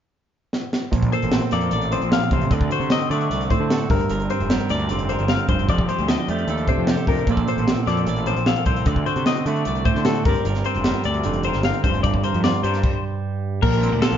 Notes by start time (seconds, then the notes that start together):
0.53 snare
0.73 snare
0.92 A#1 A#2, kick, closed hi-hat
1.03 kick, closed hi-hat
1.13 A4 C5, closed hi-hat
1.22 A1, closed hi-hat
1.32 C4, snare, closed hi-hat
1.41 closed hi-hat
1.51 F2 A#3 A4 D5, snare, closed hi-hat
1.61 closed hi-hat
1.71 A1 D5, closed hi-hat
1.81 closed hi-hat
1.92 F3 C4 C5, closed hi-hat
2.02 A#1, closed hi-hat
2.11 A#2 F5, snare, closed hi-hat
2.22 closed hi-hat
2.31 A1 C3 C5, kick, closed hi-hat
2.41 closed hi-hat
2.51 D2 D3 D5, kick, closed hi-hat
2.61 kick
2.71 F#4 C5, closed hi-hat
2.80 C3, closed hi-hat
2.90 C4 D#5, snare, closed hi-hat
3.01 closed hi-hat
3.10 D3 A3 F#4 D5, closed hi-hat
3.21 closed hi-hat
3.30 C2 D5, closed hi-hat
3.41 closed hi-hat
3.50 A2 C4 C5, kick, closed hi-hat
3.60 D3
3.70 F#4 A4, snare, closed hi-hat
3.81 closed hi-hat
3.89 G1 G2 A#4, kick, open hi-hat
4.00 closed hi-hat
4.10 G1 A#4, closed hi-hat
4.20 closed hi-hat
4.30 C4 C5, closed hi-hat
4.40 F1, closed hi-hat
4.50 G3 A#4, snare, closed hi-hat
4.60 closed hi-hat
4.69 D2 D5, snare, closed hi-hat
4.79 closed hi-hat
4.89 F1 D3 C4, closed hi-hat
4.99 closed hi-hat
5.09 A#4 C5, closed hi-hat
5.19 G1, closed hi-hat
5.28 C4 F5, snare, closed hi-hat
5.39 closed hi-hat
5.48 F1 G2 C5, kick, closed hi-hat
5.59 closed hi-hat
5.69 F1 F3 D5, kick, closed hi-hat
5.78 kick
5.89 G4 C5, closed hi-hat
5.99 D2, closed hi-hat
6.08 D4 D#5, snare, closed hi-hat
6.18 closed hi-hat
6.28 F2 A3 G4 D5, closed hi-hat
6.38 closed hi-hat
6.47 D#2 A4, closed hi-hat
6.58 closed hi-hat
6.68 C3 D4 C5, kick, closed hi-hat
6.78 F2
6.87 G4 A4, snare, closed hi-hat
6.97 closed hi-hat
7.07 F2 D4 A#4, kick, open hi-hat
7.17 closed hi-hat
7.27 A#1 A#2 A#3 C4, kick, closed hi-hat
7.31 A4 D5
7.37 kick, closed hi-hat
7.48 A4 C5, closed hi-hat
7.57 A1, closed hi-hat
7.68 C4, snare, closed hi-hat
7.78 closed hi-hat
7.87 F2 A#3 A4 D5, snare, closed hi-hat
7.97 closed hi-hat
8.06 A1 D5, closed hi-hat
8.16 closed hi-hat
8.26 F3 C4 C5, closed hi-hat
8.36 A#1, closed hi-hat
8.46 A4 F5, snare, closed hi-hat
8.56 closed hi-hat
8.66 C2 C4 C5, kick, closed hi-hat
8.76 closed hi-hat
8.86 D2 D3 D5, kick, closed hi-hat
8.96 kick
9.06 F#4 C5, closed hi-hat
9.16 C3, closed hi-hat
9.26 C4 D#5, snare, closed hi-hat
9.36 closed hi-hat
9.46 D3 A3 F#4 D5, closed hi-hat
9.56 closed hi-hat
9.65 C2 D5, closed hi-hat
9.75 closed hi-hat
9.85 A2 C4 C5, kick, closed hi-hat
9.95 D3, snare
10.05 F#4 A4, snare, closed hi-hat
10.15 closed hi-hat
10.25 G1 G2 G3 C4 A#4 D5, kick, open hi-hat
10.35 closed hi-hat
10.45 G1 A#4, closed hi-hat
10.55 snare, closed hi-hat
10.64 C4 C5, closed hi-hat
10.75 F1, closed hi-hat
10.84 G3 A#4, snare, closed hi-hat
10.94 closed hi-hat
11.04 D2 D5, closed hi-hat
11.14 closed hi-hat
11.23 F1 D3 C4, closed hi-hat
11.33 closed hi-hat
11.43 A#4 C5, closed hi-hat
11.53 G1, snare, closed hi-hat
11.63 C4 F5, snare, closed hi-hat
11.74 closed hi-hat
11.83 F1 G2 C5, kick, closed hi-hat
11.94 closed hi-hat
12.03 G1 G2 D5, kick, closed hi-hat
12.14 kick
12.24 A#4 C5, closed hi-hat
12.34 F2, closed hi-hat
12.44 F4 D5, snare, closed hi-hat
12.54 closed hi-hat
12.63 G2 G3 A#4 C5, closed hi-hat
12.74 snare, closed hi-hat
12.84 kick, crash
13.62 A#1 A#2 A#4, kick, crash
13.73 closed hi-hat
13.83 C4, closed hi-hat
13.92 D2 D4
14.02 A#3 F4 A4, snare, closed hi-hat
14.12 A#1, closed hi-hat